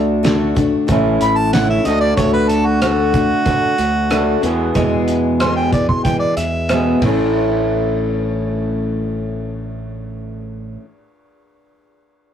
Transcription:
Already playing: D2 D3 A3 D4 F#4
0.23 D3 A3 D4 F#4, snare, closed hi-hat
0.55 A3 D4 F#4, kick, closed hi-hat
0.87 A1 A2 E3 A3 C#4 E4, kick, closed hi-hat
1.21 A1 B5, closed hi-hat
1.37 A5
1.52 A2 E3 A3 C#4 E4 F#5, snare, closed hi-hat
1.70 E5
1.85 D2 D3 A3 D4 F#4 D#5, closed hi-hat
2.01 D5
2.17 D2 D3 A3 D4 F#4 C#5, kick, closed hi-hat
2.33 B4
2.49 A4, closed hi-hat
2.66 F#4
2.80 D3 A3 D4 F#4, cross-stick, closed hi-hat
3.13 A3 D4 F#4, kick, closed hi-hat
3.45 D3 A3 D4, kick, closed hi-hat
3.49 F#4
3.78 D2, closed hi-hat
4.10 D3 A3 D4 F#4, cross-stick, closed hi-hat
4.41 E2 B2 E3 G#3 B3 G#4, closed hi-hat
4.46 G#4
4.74 E2 B2 E3 G#3 B3 G#4, kick, closed hi-hat
5.08 closed hi-hat
5.40 E2 B2 E3 G#3 B3 G#4 C6, cross-stick, closed hi-hat
5.56 G5
5.73 E3 G#3 B3 G#4 D5, kick, closed hi-hat
5.89 C6, kick
6.04 E3 G#3 B3 G5, kick, closed hi-hat
6.08 G#4
6.19 D5
6.37 E2 E5, closed hi-hat
6.69 E2 B2 E3 G#3 B3 G#4, cross-stick, closed hi-hat
7.00 A1 A2 E3, kick, ride
7.04 A3 C#4 E4 A4

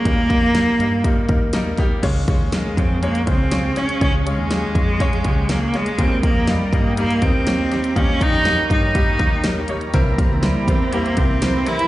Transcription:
Already playing: A#3
0.05 D#2 A#2 G3 A#3 D#4 A#4, kick, closed hi-hat
0.30 G3 A#3 D#4 A#4, kick, closed hi-hat
0.42 F2
0.55 G3 A#3 D#4 A#4, snare, closed hi-hat
0.79 G2 G3 A#3 D#4 A#4, closed hi-hat
1.04 G3 A#3 D#4 F4, kick, closed hi-hat
1.29 D#2 G3 A#3 D#4 A#4, kick, closed hi-hat
1.53 G3 A#3 D#4 A#4, snare, closed hi-hat
1.77 G3 A#3 D#4 G4, kick, snare, closed hi-hat
2.03 C#2 G#2 G#3 C#4 F4 G#4 C#5 F5 C#6, kick, closed hi-hat, crash
2.28 G#3 C#4 F4 C#5, kick, closed hi-hat
2.40 D#2
2.52 G#3 C#4 F4 A#4, snare, closed hi-hat
2.77 F2 G#3 C4 C#4 F4 C#5, kick, closed hi-hat
3.03 G#3 A#3 C#4 F4 C#5, closed hi-hat
3.15 closed hi-hat
3.27 C#2 G#3 C4 C#4 F4 C5, kick, closed hi-hat
3.51 G#3 C#4 F4 C#5, snare, closed hi-hat
3.76 G#3 C#4 F4 C#5, snare, closed hi-hat
3.89 closed hi-hat
4.01 C#2 G#2 G#3 C#4 F4 C#5, kick, closed hi-hat
4.26 G#3 C#4 F4 C#5, closed hi-hat
4.38 D#2
4.51 G#3 C#4 F4 G4, snare, closed hi-hat
4.75 F2 G#3 C#4 F4 C#5, kick, closed hi-hat
5.00 G#3 C#4 F4 C#5, kick, closed hi-hat
5.13 closed hi-hat
5.25 C#2 G#3 C#4 F4 G4, kick, closed hi-hat
5.49 G#3 A#3 C#4 F4 G#4, snare, closed hi-hat
5.74 G#3 C#4 F4 C#5, snare, closed hi-hat
5.86 closed hi-hat
5.98 D#2 A#2 G3 A#3 C4 D#4 G4 A#4 D#5 A#5, kick, closed hi-hat
6.23 G3 A#3 D#4 A#4, kick, closed hi-hat
6.35 F2
6.47 G3 A#3 D#4 F4, snare, closed hi-hat
6.72 G2 G3 A#3 D#4 A#4, kick, closed hi-hat
6.97 G3 A#3 D#4 A#4, closed hi-hat
7.10 closed hi-hat
7.22 D#2 G3 A#3 C4 D#4 A#4, kick, closed hi-hat
7.47 G3 A#3 D#4 C#5, snare, closed hi-hat
7.71 G3 A#3 D#4 G4, snare, closed hi-hat
7.84 closed hi-hat
7.96 D#2 A#2 G3 A#3 C#4 D#4 F4 C#5, kick, closed hi-hat
8.21 G3 A#3 D#4 G4, kick, closed hi-hat
8.33 F2
8.45 G3 A#3 D#4 A#4, snare, closed hi-hat
8.70 G2 G3 A#3 D#4 F4, kick, closed hi-hat
8.95 G3 A#3 D#4 G4, kick, closed hi-hat
9.19 D#2 G3 A#3 D#4 A#4, kick, closed hi-hat
9.44 G3 A#3 D#4 A#4, snare, closed hi-hat
9.68 G3 A#3 D#4 C#5, closed hi-hat
9.81 closed hi-hat
9.93 C2 G2 C3 E3 G3 A#3 C4 E4 G4 A#4 C5, kick, closed hi-hat
10.18 G3 C4 E4 A#4, kick, closed hi-hat
10.30 C#2 A#3 C4 G4
10.43 G3 C4 E4 G4, snare, closed hi-hat
10.67 E2 E3 G3 A#3 C4 E4 G4 A#4, kick, closed hi-hat
10.93 G3 A#3 C4 E4 G4, closed hi-hat
11.04 A#3 C4 G4, closed hi-hat
11.17 C2 G3 C4 E4 A#4, kick, closed hi-hat
11.42 E3 G3 A#3 C4 E4 G4 A#4, snare, closed hi-hat
11.66 E3 G3 A#3 C4 E4 G4 A#4, snare, closed hi-hat
11.79 closed hi-hat

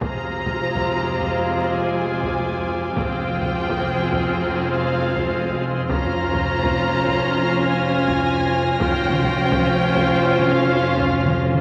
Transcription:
0.01 F1 F2 C3 G#3 F4 G#4 C5 F5 A#5, taiko
0.46 taiko
0.62 C4 C5 D6
0.76 taiko
1.19 F5, taiko
1.78 G#5
2.23 taiko
2.95 F1 F2 G#3 C4 F4 G#4 C5 G5, taiko
3.40 taiko
3.70 taiko
4.13 taiko
4.33 C#6
4.43 A#5
4.73 F5
5.16 taiko
5.89 F1 F2 C#4 F4 C5 A#5 F6, taiko
6.34 taiko
6.46 A#6
6.63 taiko
7.07 taiko
7.64 G#5
8.08 taiko
8.79 F1 F2 C#4 F4 C5 G5, taiko
9.10 taiko mid
9.24 taiko
9.52 taiko
9.96 taiko
10.39 taiko mid
10.53 F5
10.97 taiko
11.26 taiko mid
11.54 taiko mid

